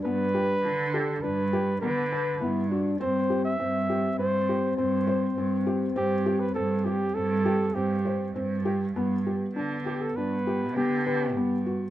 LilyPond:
<<
  \new Staff \with { instrumentName = "Flugelhorn" } { \time 5/4 \key g \major \tempo 4 = 101 b'4. a'8 b'4 b'4. r8 | c''8. e''4~ e''16 c''4 c''4. r8 | g'8. b'16 a'8 g'8 a'4 g'4 r4 | r4. g'16 a'16 b'4 g'8 g'4 r8 | }
  \new Staff \with { instrumentName = "Felt piano" } { \time 5/4 \key g \major b8 g'8 d'8 g'8 d'8 g'8 b8 b'8 b8 fis'8 | c'8 g'8 c'8 g'8 c'8 g'8 c'8 c''8 c'8 g'8 | c'8 g'8 c'8 g'8 c'8 g'8 c'8 c''8 c'8 g'8 | b8 g'8 d'8 g'8 d'8 g'8 b8 b'8 b8 fis'8 | }
  \new Staff \with { instrumentName = "French horn" } { \time 5/4 \key g \major d'2.~ d'8 r8 e'8 d'8 | c'4 c'1~ | c'1~ c'8 r8 | b1~ b4 | }
  \new Staff \with { instrumentName = "Cello" } { \clef bass \time 5/4 \key g \major g,4 d4 g,4 d4 g,4 | g,4 g,4 g,4 g,4 g,4 | g,4 g,4 g,4 g,4 g,4 | g,4 d4 g,4 d4 g,4 | }
>>